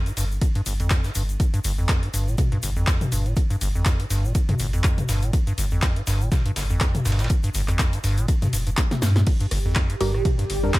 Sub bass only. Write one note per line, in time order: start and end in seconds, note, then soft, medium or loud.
0.17 0.38 G1 medium
0.66 0.87 G1 medium
1.15 1.36 G1 medium
1.65 1.85 G1 loud
2.14 2.35 G1 medium
2.63 2.84 G1 loud
3.12 3.33 G1 medium
3.61 3.82 G1 medium
4.10 4.31 G1 medium
4.60 4.80 G1 loud
5.09 5.30 G1 loud
5.58 5.79 G1 medium
6.07 6.28 G1 medium
6.56 6.77 G1 loud
7.06 7.26 G1 medium
7.55 7.76 G1 loud
8.04 8.25 G1 medium
8.53 8.74 F1 loud
9.02 9.23 G2 medium
9.51 9.72 G1 loud
10.01 10.22 G1 medium
10.50 10.71 G1 medium